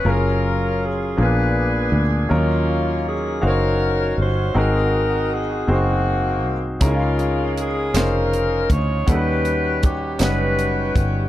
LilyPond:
<<
  \new Staff \with { instrumentName = "Saxophone section" } { \time 6/8 \key ees \dorian \tempo 4. = 53 << { bes'4 aes'8 ces''4 r8 | f'4 aes'8 bes'4 c''8 | bes'4 aes'8 ges'4 r8 | f'4 aes'8 bes'4 des''8 |
b'4 g'8 b'4 r8 | } \\ { <des' f'>4. <d' aes'>4. | <bes des'>4. <des' ges'>4. | <ees' ges'>4. <bes c'>4. | <aes bes>4. <ees' f'>4. |
<fis' g'>4. <fis' g'>4. | } >> }
  \new Staff \with { instrumentName = "Grand piano" } { \time 6/8 \key ees \dorian <ges des' f' aes' bes'>4 r8 <bes ces' d' f' aes'>4 r8 | <ges des' ees' f' bes'>4 r8 <des' ees' ges' c'' des'' f''>4 r8 | <c' ees' ges' aes' bes'>4 r8 <c' ees' ges' aes' c''>4 r8 | <des' ees' f' aes' bes'>4 r8 <des' ees' f' aes' c''>4 r8 |
<g des' ees' a' b' fis''>4 r8 <g des' ees' b' fis''>4 r8 | }
  \new Staff \with { instrumentName = "Grand piano" } { \clef bass \time 6/8 \key ees \dorian r4. bes,4. | ees4. r4. | aes,4. r4. | des4. r4. |
ees4. r4. | }
  \new Staff \with { instrumentName = "Fingered electric bass" } { \clef bass \time 6/8 \key ees \dorian ges,,4. bes,,4 d,8 | ees,4. ges,,4 g,,8 | aes,,4. ges,,4 c,8 | des,4. f,,4 d,8 |
ees,4. fis,,4 g,,8 | }
  \new DrumStaff \with { instrumentName = "Drums" } \drummode { \time 6/8 r4. r4. | r4. r4. | r4. r4. | <hh bd>8 hh8 hh8 <hh sn>8 hh8 <hh bd>8 |
<hh bd>8 hh8 <hh bd>8 <hh sn>8 hh8 <hh bd>8 | }
>>